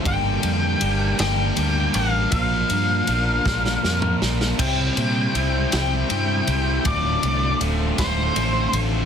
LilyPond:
<<
  \new Staff \with { instrumentName = "Lead electric guitar" } { \time 6/8 \key d \minor \tempo 4. = 53 g''4. g''4 f''8 | f''2~ f''8 r8 | g''4. g''4. | d''4 r8 c''4 r8 | }
  \new Staff \with { instrumentName = "Distorted electric guitar" } { \time 6/8 \key d \minor <g, d g bes d' g'>8 <g bes d' g'>8 <g bes d' g'>8 <g bes d' g'>8 <g bes d' g'>8 <g bes d' g'>8 | <bes, f bes d' f' bes'>8 <bes d' f' bes'>8 <bes d' f' bes'>8 <bes d' f' bes'>8 <bes d' f' bes'>8 <bes d' f' bes'>8 | <c g c' e' g' c''>8 <c' e' g' c''>8 <c' e' g' c''>8 <c' e' g' c''>8 <c' e' g' c''>8 <c' e' g' c''>8 | <d, a, d a c' f'>8 <d a c' f'>8 <d a c' f'>8 <d a c' f'>8 <d a c' f'>8 <d a c' f'>8 | }
  \new Staff \with { instrumentName = "Distorted electric guitar" } { \time 6/8 \key d \minor <g, d g bes d' g'>8 <g bes d' g'>8 <g bes d' g'>8 <g, d g bes d' g'>8 <g bes d' g'>4 | <bes, f bes d' f' bes'>8 <bes d' f' bes'>8 <bes d' f' bes'>8 <bes, f bes d' f' bes'>8 <bes d' f' bes'>4 | <c g c' e' g' c''>8 <c' e' g' c''>8 <c' e' g' c''>8 <c g c' e' g' c''>8 <c' e' g' c''>4 | <d, a, d a c' f'>8 <d a c' f'>8 <d a c' f'>8 <d, a, d a c' f'>8 <d a c' f'>4 | }
  \new Staff \with { instrumentName = "Fingered electric bass" } { \clef bass \time 6/8 \key d \minor g,,8 f,8 g,,8 g,,8 d,8 a,,8 | bes,,8 g,8 bes,,8 bes,,8 f,8 bes,,8 | c,8 bes,8 c,8 c,8 g,8 c,8 | d,,8 c,8 d,,8 d,,8 a,,8 a,,8 | }
  \new DrumStaff \with { instrumentName = "Drums" } \drummode { \time 6/8 <bd cymr>8 cymr8 cymr8 <cymr sn>8 cymr8 cymr8 | <bd cymr>8 cymr8 cymr8 <bd sn>16 sn16 sn16 toml16 sn16 sn16 | <cymc bd cymr>8 cymr8 cymr8 <cymr sn>8 cymr8 cymr8 | <bd cymr>8 cymr8 cymr8 <bd cymr sn>8 cymr8 cymr8 | }
>>